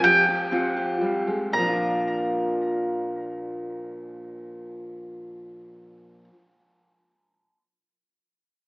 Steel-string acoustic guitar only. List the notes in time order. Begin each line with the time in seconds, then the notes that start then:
0.04 F3 G4
0.28 G4
0.51 C4 F4
0.77 G4
1.01 G3
1.27 G#3
1.53 A#2
1.58 F3
1.63 D4
1.68 F4
1.73 A#4